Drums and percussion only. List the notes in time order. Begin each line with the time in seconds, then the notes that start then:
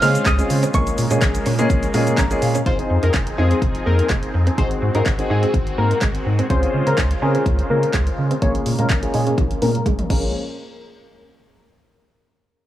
0.02 open hi-hat, shaker
0.15 closed hi-hat, shaker
0.25 kick, snare, clap, closed hi-hat, shaker
0.39 closed hi-hat, shaker
0.50 open hi-hat, shaker
0.63 closed hi-hat, shaker
0.74 kick, closed hi-hat, shaker
0.87 closed hi-hat, shaker
0.98 open hi-hat, shaker
1.11 closed hi-hat, shaker
1.21 kick, snare, clap, closed hi-hat, shaker
1.35 closed hi-hat, shaker
1.46 open hi-hat, shaker
1.59 closed hi-hat, shaker
1.70 kick, closed hi-hat, shaker
1.83 closed hi-hat, shaker
1.94 open hi-hat, shaker
2.07 closed hi-hat, shaker
2.17 kick, snare, clap, closed hi-hat, shaker
2.31 closed hi-hat, shaker
2.42 open hi-hat, shaker
2.55 closed hi-hat, shaker
2.66 kick, closed hi-hat
2.79 closed hi-hat
3.03 closed hi-hat
3.14 kick, snare, clap, closed hi-hat
3.27 closed hi-hat
3.51 closed hi-hat
3.62 kick, closed hi-hat
3.75 closed hi-hat
3.99 closed hi-hat
4.09 kick, snare, clap, closed hi-hat
4.23 closed hi-hat
4.47 closed hi-hat
4.58 kick, closed hi-hat
4.71 closed hi-hat
4.95 closed hi-hat
5.06 kick, snare, clap, closed hi-hat
5.19 closed hi-hat
5.43 closed hi-hat
5.54 kick, closed hi-hat
5.67 closed hi-hat
5.91 closed hi-hat
6.01 kick, snare, clap, closed hi-hat
6.15 closed hi-hat
6.39 closed hi-hat
6.50 kick, closed hi-hat
6.63 closed hi-hat
6.87 closed hi-hat
6.97 kick, snare, clap, closed hi-hat
7.11 closed hi-hat
7.35 closed hi-hat
7.46 kick, closed hi-hat
7.59 closed hi-hat
7.83 closed hi-hat
7.93 kick, snare, clap, closed hi-hat
8.07 closed hi-hat
8.31 closed hi-hat
8.42 kick, closed hi-hat
8.55 closed hi-hat
8.66 open hi-hat
8.79 closed hi-hat
8.89 kick, snare, clap, closed hi-hat
9.03 closed hi-hat
9.14 open hi-hat
9.27 closed hi-hat
9.38 kick, closed hi-hat, high tom
9.51 closed hi-hat
9.62 open hi-hat, mid tom
9.75 closed hi-hat
9.86 kick, closed hi-hat, mid tom
9.99 closed hi-hat, mid tom
10.10 kick, crash